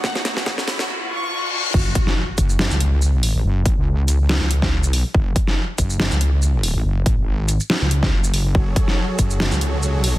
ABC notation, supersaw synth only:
X:1
M:4/4
L:1/8
Q:"Swing 16ths" 1/4=141
K:F#m
V:1 name="Supersaw synth"
[F,,C,A,Fc]4 z4 | z8 | z8 | z8 |
z8 | [F,FGAc]8 |]